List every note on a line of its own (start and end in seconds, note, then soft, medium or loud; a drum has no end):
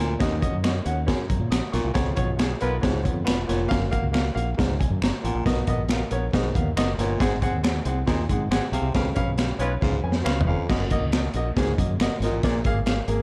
0.00 0.16 D2 loud
0.00 0.16 A#2 medium
0.00 0.39 G#5 medium
0.19 0.46 D#2 medium
0.19 0.38 D#2 medium
0.19 0.82 D#3 medium
0.19 0.32 C#4 loud
0.19 0.32 F#4 medium
0.19 0.32 D#5 loud
0.19 kick loud
0.19 snare medium
0.19 closed hi-hat medium
0.41 0.53 C#4 medium
0.41 0.54 F#4 medium
0.41 0.54 D#5 loud
0.41 kick medium
0.41 closed hi-hat medium
0.53 0.79 F#2 medium
0.63 0.75 C#4 medium
0.63 0.76 F#4 medium
0.63 0.76 D#5 medium
0.63 finger snap medium
0.63 snare medium
0.63 closed hi-hat medium
0.85 1.12 D#2 medium
0.85 0.97 C#4 medium
0.85 0.98 F#4 medium
0.85 0.98 F#5 medium
0.85 closed hi-hat medium
1.06 1.25 F#2 medium
1.06 1.19 C#4 medium
1.06 1.19 F#4 medium
1.06 1.19 G#4 medium
1.06 kick medium
1.06 snare loud
1.06 closed hi-hat medium
1.28 1.39 F#2 medium
1.28 1.50 C#5 soft
1.28 1.50 A#5 medium
1.28 kick medium
1.28 closed hi-hat medium
1.40 1.49 A#2 medium
1.50 1.60 A#1 medium
1.50 1.72 F#5 medium
1.50 1.72 D#6 medium
1.50 finger snap medium
1.50 snare loud
1.50 closed hi-hat loud
1.72 1.82 B1 medium
1.72 1.91 A#2 medium
1.72 2.15 F5 soft
1.72 2.14 C#6 medium
1.72 snare soft
1.72 closed hi-hat medium
1.85 1.93 C2 medium
1.93 2.13 C#2 medium
1.93 2.12 F2 medium
1.93 2.56 C#3 medium
1.93 2.07 B3 loud
1.93 2.07 F4 medium
1.93 2.07 C#5 loud
1.93 kick loud
1.93 snare medium
1.93 closed hi-hat medium
2.15 2.52 B1 medium
2.15 2.28 B3 medium
2.15 2.28 F4 medium
2.15 2.29 C#5 loud
2.15 kick medium
2.15 closed hi-hat medium
2.37 2.50 B3 medium
2.37 2.51 F4 medium
2.37 2.51 G#4 medium
2.37 finger snap medium
2.37 snare medium
2.37 closed hi-hat medium
2.60 2.79 B1 medium
2.60 2.76 G#3 medium
2.60 2.73 B3 medium
2.60 2.73 F4 medium
2.60 2.76 F4 medium
2.60 2.73 A#4 medium
2.60 2.75 B4 loud
2.60 closed hi-hat medium
2.81 3.07 C#2 medium
2.81 3.00 G#2 medium
2.81 2.94 B3 medium
2.81 2.94 F4 medium
2.81 2.94 C#5 medium
2.81 kick medium
2.81 snare loud
2.81 closed hi-hat medium
3.02 3.23 F2 medium
3.02 3.15 B3 medium
3.02 3.16 F4 medium
3.02 3.16 C#5 medium
3.02 kick medium
3.02 closed hi-hat medium
3.24 3.45 E1 medium
3.24 3.38 B3 medium
3.24 3.38 F4 medium
3.24 3.38 B4 loud
3.24 finger snap medium
3.24 snare loud
3.24 closed hi-hat medium
3.47 3.66 F1 medium
3.47 3.66 A#2 medium
3.47 3.60 B3 medium
3.47 3.60 F4 medium
3.47 3.60 C#5 medium
3.47 snare soft
3.47 closed hi-hat medium
3.68 3.97 F#1 medium
3.68 3.88 F#2 medium
3.68 3.81 A#3 loud
3.68 3.82 F#4 medium
3.68 3.82 F5 loud
3.68 kick loud
3.68 closed hi-hat medium
3.72 snare medium
3.90 4.04 A#3 loud
3.90 4.04 F#4 medium
3.90 4.04 F5 loud
3.90 kick medium
3.90 closed hi-hat medium
4.03 4.29 C#2 medium
4.12 4.25 A#3 medium
4.12 4.25 F#4 medium
4.12 4.26 F5 medium
4.12 finger snap medium
4.12 snare medium
4.12 closed hi-hat medium
4.34 4.53 A#1 medium
4.34 4.47 A#3 medium
4.34 4.47 F#4 medium
4.34 4.48 F5 medium
4.34 closed hi-hat medium
4.57 4.85 C#2 medium
4.57 4.76 G#2 medium
4.57 4.70 A#3 medium
4.57 4.70 F#4 medium
4.57 4.70 A#4 medium
4.57 kick medium
4.57 snare loud
4.57 closed hi-hat medium
4.80 5.01 G#5 medium
4.80 kick medium
4.80 closed hi-hat medium
4.90 4.99 F#2 medium
5.01 5.10 F#1 medium
5.01 5.23 C#5 medium
5.01 5.23 A#5 medium
5.01 finger snap medium
5.01 snare loud
5.01 closed hi-hat medium
5.23 5.33 A1 medium
5.23 5.41 A#2 medium
5.23 5.45 A#4 medium
5.23 5.65 F#5 medium
5.23 closed hi-hat medium
5.35 5.43 A#1 medium
5.45 5.63 B1 medium
5.45 5.63 B2 medium
5.45 5.65 B3 loud
5.45 5.58 A#4 medium
5.45 5.58 D#5 loud
5.45 kick loud
5.45 snare loud
5.45 closed hi-hat medium
5.67 6.02 A#1 medium
5.67 5.79 B3 loud
5.67 5.80 A#4 medium
5.67 5.80 D#5 loud
5.67 kick medium
5.67 closed hi-hat medium
5.88 6.02 B3 medium
5.88 6.02 A#4 medium
5.88 6.02 F5 medium
5.88 finger snap medium
5.88 snare medium
5.88 closed hi-hat medium
6.10 6.29 A#1 medium
6.10 6.23 B3 medium
6.10 6.23 A#4 medium
6.10 6.24 C#5 medium
6.10 closed hi-hat medium
6.33 6.51 B1 medium
6.33 6.50 G#2 medium
6.33 6.45 B3 medium
6.33 6.45 A#4 medium
6.33 6.45 D#5 medium
6.33 kick medium
6.33 snare loud
6.33 closed hi-hat medium
6.54 6.73 D#2 medium
6.54 6.66 B3 medium
6.54 6.67 A#4 medium
6.54 6.67 F5 medium
6.54 kick medium
6.54 closed hi-hat medium
6.77 6.94 F#1 medium
6.77 6.89 B3 loud
6.77 6.89 A#4 medium
6.77 6.89 D#5 loud
6.77 finger snap medium
6.77 snare medium
6.77 closed hi-hat medium
6.98 7.16 G1 medium
6.98 7.16 A#2 medium
6.98 7.11 B3 medium
6.98 7.11 A#4 medium
6.98 7.11 C#5 medium
6.98 snare soft
6.98 closed hi-hat medium
7.20 7.46 G#1 loud
7.20 7.38 G#2 medium
7.20 7.82 G#2 medium
7.20 7.32 C4 loud
7.20 7.32 G#4 loud
7.20 7.33 F#5 loud
7.20 kick loud
7.20 snare medium
7.20 closed hi-hat medium
7.42 7.54 C4 loud
7.42 7.54 G#4 medium
7.42 7.54 F#5 loud
7.42 kick medium
7.42 closed hi-hat medium
7.53 7.79 D#2 medium
7.63 7.75 C4 medium
7.63 7.76 G#4 medium
7.63 7.76 F#5 medium
7.63 finger snap medium
7.63 snare medium
7.63 closed hi-hat medium
7.85 8.03 C2 medium
7.85 7.98 C4 medium
7.85 7.98 G#4 medium
7.85 7.98 F#5 medium
7.85 closed hi-hat medium
8.06 8.25 D#2 medium
8.06 8.25 A#2 medium
8.06 8.19 C4 medium
8.06 8.19 G#4 medium
8.06 8.20 D#5 medium
8.06 kick medium
8.06 snare loud
8.06 closed hi-hat medium
8.29 8.47 G#2 medium
8.29 8.42 C4 medium
8.29 8.42 G#4 medium
8.29 8.42 F#5 medium
8.29 kick medium
8.29 closed hi-hat medium
8.49 8.59 G#1 medium
8.49 8.63 C4 loud
8.49 8.63 G#4 medium
8.49 8.63 F#5 loud
8.49 finger snap medium
8.49 snare loud
8.49 closed hi-hat loud
8.72 8.81 B1 medium
8.72 8.90 C3 medium
8.72 8.85 C4 medium
8.72 8.85 G#4 medium
8.72 8.85 F5 medium
8.72 closed hi-hat medium
8.82 8.91 C2 medium
8.94 9.12 C#2 medium
8.94 9.12 F2 medium
8.94 9.56 C#3 medium
8.94 9.07 C#4 loud
8.94 9.07 B4 medium
8.94 9.07 F5 loud
8.94 kick loud
8.94 snare loud
8.94 closed hi-hat medium
9.15 9.51 B1 medium
9.15 9.28 C#4 loud
9.15 9.28 B4 medium
9.15 9.28 F5 loud
9.15 kick medium
9.15 closed hi-hat medium
9.37 9.50 C#4 medium
9.37 9.50 B4 medium
9.37 9.50 F5 medium
9.37 finger snap medium
9.37 snare medium
9.37 closed hi-hat medium
9.59 9.77 B1 medium
9.59 9.73 G#3 medium
9.59 9.71 C#4 medium
9.59 9.73 F4 medium
9.59 9.72 B4 medium
9.59 9.74 B4 loud
9.59 9.72 C#5 medium
9.59 closed hi-hat medium
9.81 9.99 C#2 medium
9.81 10.00 G#2 medium
9.81 9.93 C#4 medium
9.81 9.94 B4 medium
9.81 9.94 F5 medium
9.81 kick medium
9.81 snare soft
10.02 10.21 F2 medium
10.02 10.15 C#4 medium
10.02 10.15 B4 medium
10.02 10.15 G#5 medium
10.12 snare medium
10.24 10.43 C#2 medium
10.24 10.37 C#4 loud
10.24 10.37 B4 medium
10.24 10.37 F5 loud
10.24 finger snap medium
10.24 snare medium
10.41 floor tom medium
10.46 10.55 F1 medium
10.46 10.65 F2 medium
10.46 10.59 C#4 medium
10.46 10.59 B4 medium
10.46 10.59 F5 medium
10.68 10.95 F#1 medium
10.68 10.87 F#2 medium
10.68 10.80 A#3 medium
10.68 10.81 F#4 medium
10.68 10.81 D#5 loud
10.68 kick loud
10.68 snare medium
10.68 crash medium
10.90 11.02 A#3 loud
10.90 11.03 F#4 medium
10.90 11.03 D#5 loud
10.90 kick medium
10.90 closed hi-hat medium
11.01 11.27 C#2 medium
11.12 11.25 A#3 medium
11.12 11.25 F#4 medium
11.12 11.25 D#5 medium
11.12 finger snap medium
11.12 snare loud
11.12 closed hi-hat medium
11.34 11.51 A#1 medium
11.34 11.47 A#3 medium
11.34 11.47 F#4 medium
11.34 11.47 D#5 loud
11.34 closed hi-hat medium
11.56 11.74 C#2 medium
11.56 11.74 G#2 medium
11.56 11.69 A#3 medium
11.56 11.69 F#4 medium
11.56 11.69 G#4 medium
11.56 kick medium
11.56 snare loud
11.56 closed hi-hat medium
11.78 11.95 F#2 medium
11.78 11.90 A#3 medium
11.78 11.90 F#4 medium
11.78 11.90 D#5 medium
11.78 kick medium
11.78 closed hi-hat medium
11.98 12.07 F#1 medium
11.98 12.12 A#3 medium
11.98 12.12 F#4 medium
11.98 12.12 D#5 loud
11.98 finger snap medium
11.98 snare loud
11.98 closed hi-hat medium
12.20 12.29 G#1 medium
12.20 12.39 A#2 medium
12.20 12.34 A#3 medium
12.20 12.34 F#4 medium
12.20 12.34 D#5 medium
12.20 snare soft
12.20 closed hi-hat medium
12.31 12.40 A1 medium
12.43 12.61 A#1 loud
12.43 13.04 A#2 medium
12.43 12.61 A#2 medium
12.43 12.55 A#3 loud
12.43 12.55 G#4 medium
12.43 12.55 D5 loud
12.43 kick loud
12.43 snare loud
12.43 closed hi-hat medium
12.64 13.00 G#1 medium
12.64 12.77 A#3 loud
12.64 12.77 G#4 medium
12.64 12.77 F5 loud
12.64 kick medium
12.64 closed hi-hat medium
12.86 12.98 A#3 medium
12.86 12.98 G#4 medium
12.86 12.98 F5 medium
12.86 finger snap medium
12.86 snare medium
12.86 closed hi-hat medium
13.07 13.22 G#1 medium
13.07 13.19 A#3 medium
13.07 13.20 G#4 medium
13.07 13.20 A#4 medium
13.07 closed hi-hat medium